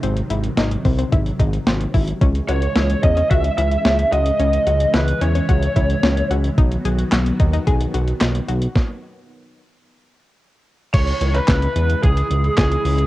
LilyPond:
<<
  \new Staff \with { instrumentName = "Lead electric guitar" } { \time 4/4 \key cis \minor \tempo 4 = 110 r1 | r8 cis''4 dis''8 e''8 e''4 dis''8~ | dis''4 b'8 cis''2 r8 | r1 |
r1 | cis''8. b'4~ b'16 gis'4 gis'4 | }
  \new Staff \with { instrumentName = "Synth arpeggio sound" } { \time 4/4 \key cis \minor bis8 e'8 dis'8 bis16 bis16 e'8 dis'8 bis8 e'8 | cis'8 fis'8 e'8 cis'16 cis'16 fis'8 e'8 cis'8 fis'8 | cis'8 fis'8 e'8 cis'16 cis'16 fis'8 e'8 cis'8 fis'8 | dis'8 gis'8 fis'8 dis'16 dis'16 gis'8 fis'8 dis'8 fis'8 |
r1 | r1 | }
  \new Staff \with { instrumentName = "String machine" } { \clef bass \time 4/4 \key cis \minor << { r1 | r1 | e'1 | fis'1 |
r1 | e'1 | } \\ { <bis, dis fis>1 | <cis e gis>1~ | <cis e gis>1 | <dis fis b>1 |
r1 | <cis e gis>1 | } >> }
  \new Staff \with { instrumentName = "Analog synth bass" } { \clef bass \time 4/4 \key cis \minor gis,,8 gis,,8 gis,,8 bis,,8 gis,,8 gis,,8 gis,,8 gis,,8 | cis,8 cis,8 cis,8 e,8 cis,8 cis,8 cis,8 cis,8 | cis,8 cis,8 cis,8 e,8 cis,8 cis,8 cis,8 cis,8 | b,,8 b,,8 b,,8 dis,8 b,,8 b,,8 b,,8 b,,8 |
r1 | cis,8 cis,8 cis,8 e,8 cis,8 cis,8 cis,8 cis,8 | }
  \new DrumStaff \with { instrumentName = "Drums" } \drummode { \time 4/4 hh16 hh16 hh16 hh16 <hh sn>16 hh16 <hho bd>16 hh16 <hh bd>16 hh16 <hh bd>16 hh16 <hh sn>16 hh16 <hho bd>16 hh16 | <hh bd>16 hh16 hh16 hh16 <hh sn>16 hh16 <hh bd>16 hh16 <hh bd>16 hh16 hh16 hh16 <hh sn>16 hh16 hh16 hh16 | hh16 hh16 hh16 hh16 <hh sn>16 hh16 hh16 hh16 <hh bd>16 hh16 <hh bd>16 hh16 <hh sn>16 hh16 hh16 hh16 | <hh bd>16 hh16 hh16 hh16 <hc hh sn>16 hh16 <hh bd>16 hh16 <hh bd>16 hh16 hh16 hh16 <hc hh sn>16 hh16 hh16 hh16 |
<bd sn>4 r4 r4 r4 | <cymc hh bd>16 hh16 hh16 hh16 <hc hh bd sn>16 hh16 hh16 hh16 <hh bd>16 hh16 hh16 hh16 <hc hh bd sn>16 hh16 hho16 hh16 | }
>>